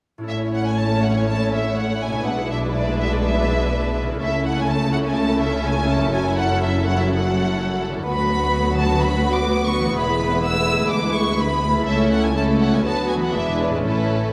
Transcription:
0.18 harp A2 C#4 E4
0.23 harp A4
0.27 double bass section A1, cello section A2, viola section A3 C#4, violin section E4 C#5 E5
0.54 violin section F#5
0.67 violin section G#5
0.79 violin section A5
1.03 violin section F#5
1.16 violin section G#5
1.27 violin section A5
1.53 violin section E5
1.77 violin section F#5
2.02 violin section G#5
2.07 harp B2
2.12 harp D4
2.16 harp E4
2.21 harp G#4
2.25 double bass section B1, cello section B2, viola section G#3 D4, violin section B4 F#5
2.51 violin section E5
2.75 violin section D5
2.99 violin section E5
3.13 violin section D5
3.24 violin section E5
4.03 harp C#3
4.08 harp C#4
4.12 harp E4
4.17 harp A4
4.21 double bass section C#2, cello section C#3, viola section A3 C#4, violin section E4 A4 E5
4.45 violin section F#5
4.59 violin section G#5
4.69 violin section A5
4.93 violin section F#5
5.06 violin section G#5
5.17 violin section A5
5.41 violin section E5
5.65 violin section G#5
5.90 violin section A5
5.96 harp F#2
6.01 harp C#4
6.05 harp E4
6.10 harp A4
6.14 double bass section F#1, cello section F#2, viola section F#3, violin section G#5
6.38 violin section F#5
6.63 violin section E5
6.87 violin section F#5
7.00 violin section E5
7.12 violin section F#5
7.89 harp D3
7.94 harp B3
7.98 harp F#4
8.03 harp B4, violin section B5
8.07 cello section D2, double bass section D2, viola section F#3 B3, violin section F#4 B4
8.79 violin section A5
9.03 violin section B5
9.35 violin section D6
9.67 violin section C#6
9.80 harp E3
9.85 harp B3
9.89 harp E4
9.94 harp G#4
9.98 double bass section E1, cello section E2, viola section G#3, violin section E4 B5
10.46 violin section E6
10.74 harp D3
10.79 harp B3
10.83 harp E4
10.88 harp G#4
10.92 cello section D2, double bass section D2, violin section D6
11.17 violin section C#6
11.40 violin section B5
11.70 harp C#3
11.74 harp A3
11.79 harp E4
11.83 harp A4, violin section A4
11.87 double bass section C#2, cello section C#2, viola section A3 C#4, violin section E4 E5
12.12 violin section F#5
12.25 violin section G#5
12.36 viola section A3 C#4, violin section E4 A4 A5
12.60 violin section F#5
12.66 harp D3
12.70 harp B3, violin section G#5
12.75 harp D4
12.79 harp F#4
12.84 cello section D2, double bass section D2, viola section F#3 B3, violin section F#4 B4 A5
13.09 violin section G#5
13.16 harp E3
13.20 harp B3, violin section F#5
13.25 harp D4
13.29 harp G#4
13.34 double bass section E1, cello section E2, viola section G#3 D4, violin section E4 B4 E5
13.61 violin section C#5
13.67 harp A2
13.71 harp A3, violin section B4
13.76 harp C#4
13.80 harp A4
13.85 double bass section A1, cello section A2, viola section A3 C#4, violin section E4 A4 B4

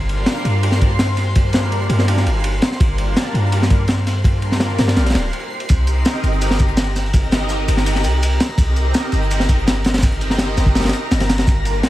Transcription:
Already playing: 808-style bass G1, analog synth pad G3 A#3 D4 F4 A#4, synth texture C5 C6
0.09 ride
0.26 snare, ride
0.45 808-style bass G2, ride
0.63 ride
0.72 snare
0.81 kick, ride
0.99 snare, ride
1.17 snare, ride
1.35 analog synth pad G3 A#3 D4 F4 A#4, kick, ride
1.53 snare, ride
1.72 ride
1.89 808-style bass G2, ride
1.99 snare
2.08 ride
2.17 snare
2.26 808-style bass G1, ride
2.44 ride
2.62 snare, ride
2.72 snare
2.80 808-style bass G1, analog synth pad G3 A#3 D4 F4 A#4, kick, ride
2.98 ride
3.17 snare, ride
3.34 808-style bass G2, ride
3.52 ride
3.62 snare
3.70 kick, ride
3.88 snare, ride
4.07 snare, ride
4.24 analog synth pad G3 A#3 D4 F4 A#4, kick, ride
4.42 ride
4.52 snare
4.60 snare, ride
4.78 808-style bass G2, snare, ride
4.88 snare, ride
4.96 808-style bass A#1, snare, ride
5.06 snare, ride
5.10 snare, ride
5.15 808-style bass D1, snare, ride
5.33 ride
5.60 ride
5.69 808-style bass C2, analog synth pad C4 D#4 G4 A#4 D#5, synth texture A#4 A#5, kick, ride, shaker
5.87 ride, shaker
6.05 snare, ride, shaker
6.23 808-style bass G1, ride, shaker
6.33 closed hi-hat
6.41 ride, shaker
6.51 snare
6.59 kick, ride, shaker
6.68 closed hi-hat
6.77 snare, ride, shaker
6.96 snare, ride, shaker
7.05 snare
7.13 analog synth pad C4 D#4 G4 A#4 D#5, kick, ride, shaker
7.23 closed hi-hat
7.31 snare, ride, shaker
7.49 snare, ride, shaker
7.68 808-style bass G1, ride, shaker
7.77 snare
7.86 ride, shaker
7.95 snare
8.04 808-style bass C2, ride, shaker
8.23 ride, shaker
8.40 snare, ride, shaker
8.49 snare
8.58 808-style bass C2, analog synth pad C4 D#4 G4 A#4 D#5, kick, ride, shaker
8.76 ride, shaker
8.94 snare, ride, shaker
9.12 808-style bass G1, ride, shaker
9.23 closed hi-hat
9.31 ride, shaker
9.40 snare
9.49 kick, ride, shaker
9.58 closed hi-hat
9.67 snare, ride, shaker
9.84 snare, ride, shaker
9.94 snare, ride
9.98 snare, ride
10.02 analog synth pad C4 D#4 G4 A#4 D#5, kick, ride, shaker
10.12 closed hi-hat
10.21 ride, shaker
10.30 snare
10.38 snare, ride, shaker
10.57 808-style bass G1, snare, ride, shaker
10.66 kick, snare
10.75 snare, ride, shaker
10.80 snare, ride
10.84 snare, ride
10.89 snare, ride
10.93 ride, shaker
11.11 808-style bass G1, snare, ride, shaker
11.20 snare, ride
11.29 snare, ride, shaker
11.38 snare, ride
11.47 808-style bass G1, analog synth pad G3 A#3 D4 F4 A#4, kick, ride, shaker
11.65 ride, shaker
11.83 snare, ride, shaker

